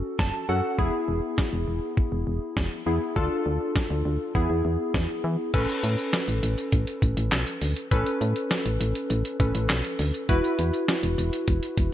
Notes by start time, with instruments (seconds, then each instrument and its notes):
Already playing: synth keys C#4 F#4 A4
0.19 fm bass F#1, synth keys A5, kick, snare
0.49 fm bass F#2, synth keys C#4 F#4 A4 F#5
0.79 fm bass E1, synth keys B3 E4 G#4, kick
1.08 fm bass E1
1.38 kick, snare
1.53 fm bass E1
1.68 fm bass E1
1.97 kick
2.12 fm bass E1
2.27 fm bass E1
2.57 fm bass E1, kick, snare
2.86 fm bass E2, synth keys B3 E4 G#4
3.16 fm bass D2, synth keys D4 F4 A4, kick
3.46 fm bass D2
3.76 kick, snare
3.90 fm bass D2
4.05 fm bass D2
4.35 fm bass E2, synth keys B3 E4 G#4, kick
4.50 fm bass E2
4.65 fm bass E2
4.94 fm bass E2, kick, snare
5.24 fm bass E3
5.54 fm bass A1, synth keys C#4 A4 B4, kick, closed hi-hat, crash
5.69 closed hi-hat
5.83 fm bass A2, closed hi-hat
5.98 closed hi-hat
6.13 snare, closed hi-hat
6.28 fm bass A1, closed hi-hat
6.43 fm bass A1, closed hi-hat
6.58 closed hi-hat
6.72 fm bass A1, kick, closed hi-hat
6.87 closed hi-hat
7.02 fm bass A1, kick, closed hi-hat
7.17 fm bass A1, closed hi-hat
7.32 fm bass B1, snare, clap, closed hi-hat
7.47 closed hi-hat
7.61 fm bass D2, open hi-hat
7.76 closed hi-hat
7.91 fm bass A1, synth keys C#4 A4 B4, kick, closed hi-hat
8.06 closed hi-hat
8.21 fm bass A2, closed hi-hat
8.36 closed hi-hat
8.51 snare, closed hi-hat
8.66 fm bass A1, closed hi-hat
8.81 fm bass A1, closed hi-hat
8.95 closed hi-hat
9.10 fm bass A1, closed hi-hat
9.25 closed hi-hat
9.40 fm bass A1, synth keys C#4 A4 B4, kick, closed hi-hat
9.55 fm bass A1, closed hi-hat
9.70 fm bass B1, snare, clap, closed hi-hat
9.85 closed hi-hat
9.99 fm bass D2, open hi-hat
10.14 closed hi-hat
10.29 fm bass E1, synth keys E4 F#4 B4, kick, closed hi-hat
10.44 closed hi-hat
10.59 fm bass E2, closed hi-hat
10.73 closed hi-hat
10.88 snare, closed hi-hat
11.03 fm bass E1, closed hi-hat
11.18 fm bass E1, closed hi-hat
11.33 closed hi-hat
11.48 fm bass E1, kick, closed hi-hat
11.63 closed hi-hat
11.78 fm bass E1, kick, closed hi-hat